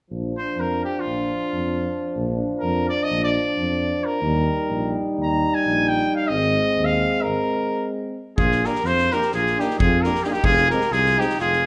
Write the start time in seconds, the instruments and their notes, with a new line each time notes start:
0.10 tuba A#1, euphonium F3, trombone D4
0.37 trumpet C5
0.57 tuba F2, trumpet A#4
0.84 trumpet G4
1.00 trumpet F4
1.06 tuba A#1
1.53 tuba F2
2.16 tuba A#1
2.59 trumpet A#4
2.63 tuba F2
2.89 trumpet D5
3.03 trumpet D#5
3.11 tuba A#1
3.24 trumpet D5
3.59 tuba F2
4.05 trumpet A#4
4.22 tuba D#2, euphonium G3, trombone D#4
4.69 tuba A#1
5.18 tuba D#2
5.23 trumpet A#5
5.55 trumpet G#5
5.66 tuba A#1
5.88 trumpet G5
6.16 trumpet F5
6.28 tuba G#1, euphonium G#3, trombone C4, trumpet D#5
6.78 tuba D#2
6.85 trumpet F5
7.22 tuba G#1, trumpet A#4
8.37 tuba A#1, trumpet F4 G#4, kick
8.51 snare
8.63 euphonium A#3, trombone D4, trumpet G4 A#4, snare
8.75 snare
8.84 tuba F2, trumpet F4 C5, snare
8.98 snare
9.11 euphonium A#3, trombone D4, trumpet G4 A#4, snare
9.22 snare
9.32 tuba A#1, trumpet F4 G#4, snare
9.46 snare
9.58 euphonium A#3, trombone D4, trumpet D#4 G4, snare
9.70 snare
9.79 tuba F2, trumpet F4 G#4, kick
10.03 euphonium A#3, trombone D4, trumpet G4 A#4, snare
10.15 snare
10.23 euphonium A#3, trombone D4, trumpet D#4 G4, snare
10.28 trumpet F4 G#4
10.32 trumpet D#4 G4, snare
10.43 tuba F1, trumpet F4 G#4, kick
10.57 snare
10.70 euphonium G#3, trombone C4, trumpet G4 A#4, snare
10.81 snare
10.90 tuba C2, trumpet F4 G#4, snare
11.06 snare
11.18 euphonium G#3, trombone C4, trumpet D#4 G4, snare
11.29 snare
11.39 tuba F1, trumpet F4 G#4, snare
11.53 snare